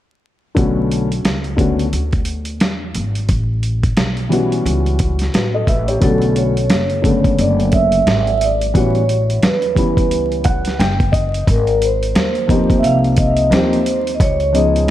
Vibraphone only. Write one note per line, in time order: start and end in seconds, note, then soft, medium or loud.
6.03 6.37 A4 medium
6.37 7.42 C#5 medium
7.41 7.75 D5 medium
7.74 8.43 E5 loud
8.42 8.76 D5 medium
8.77 9.40 C#5 loud
9.45 10.42 B4 medium
11.51 11.84 A#4 medium
11.84 12.76 C5 medium
12.79 12.84 E5 medium
12.84 13.11 F5 loud
13.12 13.18 F5 medium
13.19 13.53 D#5 medium
13.53 14.11 C5 medium
14.15 14.20 D#5 medium
14.21 14.56 C#5 loud
14.54 14.89 D#5 medium